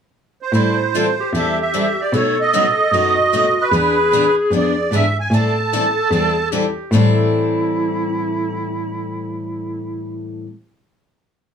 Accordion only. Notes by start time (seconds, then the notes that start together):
0.42 C5
1.37 E5
1.62 E5
2.01 D5
2.16 C#5
2.41 D#5
3.61 B4
4.56 D5
4.95 E5
5.20 G#5
5.34 A5